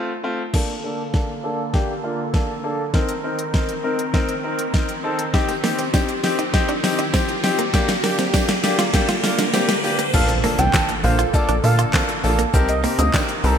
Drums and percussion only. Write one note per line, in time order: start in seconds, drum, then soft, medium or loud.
0.54 kick loud
0.54 snare soft
0.54 crash medium
1.14 kick loud
1.14 snare medium
1.74 kick loud
1.74 snare medium
2.34 kick loud
2.34 snare medium
2.94 kick loud
2.94 snare medium
3.09 closed hi-hat medium
3.39 closed hi-hat medium
3.54 kick loud
3.54 snare medium
3.69 closed hi-hat medium
3.99 closed hi-hat medium
4.14 kick loud
4.14 snare medium
4.29 closed hi-hat medium
4.59 closed hi-hat medium
4.74 kick loud
4.74 snare medium
4.89 closed hi-hat soft
5.19 closed hi-hat medium
5.34 kick loud
5.34 snare medium
5.34 tambourine soft
5.49 closed hi-hat medium
5.49 tambourine soft
5.64 snare medium
5.64 open hi-hat medium
5.64 tambourine soft
5.79 closed hi-hat medium
5.79 tambourine soft
5.94 kick loud
5.94 snare medium
5.94 tambourine medium
6.09 closed hi-hat soft
6.24 snare medium
6.24 open hi-hat medium
6.24 tambourine soft
6.39 closed hi-hat medium
6.39 tambourine soft
6.54 kick loud
6.54 snare medium
6.54 tambourine soft
6.69 closed hi-hat medium
6.84 snare loud
6.84 open hi-hat medium
6.84 tambourine medium
6.99 closed hi-hat medium
6.99 tambourine soft
7.14 kick loud
7.14 snare loud
7.14 tambourine medium
7.29 closed hi-hat soft
7.44 snare loud
7.44 open hi-hat medium
7.44 tambourine medium
7.59 closed hi-hat medium
7.74 kick loud
7.74 snare loud
7.74 tambourine soft
7.74 shaker medium
7.89 snare loud
7.89 closed hi-hat medium
7.89 tambourine soft
7.89 shaker medium
8.04 snare loud
8.04 open hi-hat medium
8.04 tambourine soft
8.04 shaker medium
8.19 snare loud
8.19 closed hi-hat medium
8.19 shaker medium
8.34 kick loud
8.34 snare loud
8.34 tambourine medium
8.34 shaker medium
8.49 snare loud
8.49 closed hi-hat medium
8.49 shaker soft
8.64 snare loud
8.64 open hi-hat medium
8.64 tambourine medium
8.64 shaker soft
8.79 snare loud
8.79 closed hi-hat medium
8.79 shaker medium
8.94 kick loud
8.94 snare loud
8.94 tambourine soft
8.94 shaker medium
9.08 snare loud
9.08 closed hi-hat medium
9.08 shaker medium
9.24 snare loud
9.24 open hi-hat medium
9.24 tambourine medium
9.24 shaker medium
9.39 snare loud
9.39 closed hi-hat medium
9.39 shaker medium
9.54 snare loud
9.54 tambourine medium
9.54 shaker medium
9.69 snare loud
9.69 closed hi-hat soft
9.69 shaker medium
9.84 open hi-hat medium
9.84 tambourine medium
9.84 shaker medium
9.99 closed hi-hat medium
9.99 shaker medium
10.14 kick loud
10.14 crash loud
10.14 tambourine soft
10.14 shaker loud
10.29 closed hi-hat medium
10.29 shaker medium
10.44 open hi-hat medium
10.44 tambourine soft
10.44 shaker medium
10.59 closed hi-hat medium
10.59 tambourine soft
10.59 shaker medium
10.74 kick loud
10.74 snare loud
10.74 clap loud
10.74 tambourine medium
10.74 shaker medium
10.89 closed hi-hat medium
10.89 shaker medium
11.04 open hi-hat medium
11.04 tambourine medium
11.04 shaker soft
11.19 closed hi-hat medium
11.19 tambourine soft
11.19 shaker medium
11.34 kick loud
11.34 tambourine medium
11.34 shaker medium
11.49 closed hi-hat medium
11.49 shaker medium
11.64 open hi-hat medium
11.64 tambourine medium
11.64 shaker medium
11.79 closed hi-hat medium
11.79 tambourine soft
11.79 shaker medium
11.94 kick loud
11.94 snare loud
11.94 clap loud
11.94 tambourine medium
11.94 shaker medium
12.09 closed hi-hat soft
12.09 shaker soft
12.24 open hi-hat medium
12.24 tambourine medium
12.24 shaker medium
12.39 closed hi-hat medium
12.39 shaker medium
12.54 kick loud
12.54 tambourine soft
12.54 shaker loud
12.69 closed hi-hat medium
12.69 shaker medium
12.84 open hi-hat medium
12.84 tambourine soft
12.84 shaker medium
12.99 closed hi-hat medium
12.99 tambourine soft
12.99 shaker medium
13.14 kick loud
13.14 snare loud
13.14 clap loud
13.14 tambourine medium
13.14 shaker medium
13.29 closed hi-hat medium
13.29 shaker medium
13.44 open hi-hat medium
13.44 tambourine soft
13.44 shaker soft